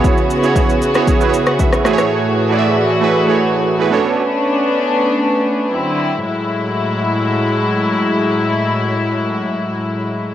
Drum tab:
SH |xxxxxxxxxxxxxxxx|----------------|----------------|----------------|
SD |-------r---r-rrr|----------------|----------------|----------------|
BD |o---o---o---o---|----------------|----------------|----------------|

SH |----------------|
SD |----------------|
BD |----------------|